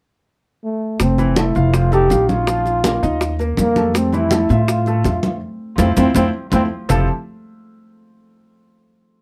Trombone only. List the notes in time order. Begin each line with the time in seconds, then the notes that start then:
0.64 A3
1.01 C4
1.38 E4
1.74 F4
1.94 G4
2.30 F4
3.60 A#3
3.96 C4
4.15 E4
4.51 F4
5.80 C4
5.99 C4
6.17 C4
6.54 C4